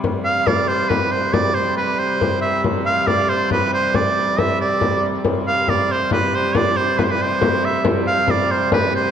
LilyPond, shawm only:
\new Staff \with { instrumentName = "Shawm" } { \time 6/8 \key c \major \tempo 4. = 92 r8 f''8 d''8 c''8 b'8 c''8 | d''8 c''8 b'8 c''4 e''8 | r8 f''8 d''8 c''8 b'8 c''8 | d''4 e''8 d''4~ d''32 r16. |
r8 f''8 d''8 c''8 b'8 c''8 | d''8 c''8 b'32 c''32 b'16 c''4 e''8 | r8 f''8 d''8 c''8 b'8 c''8 | }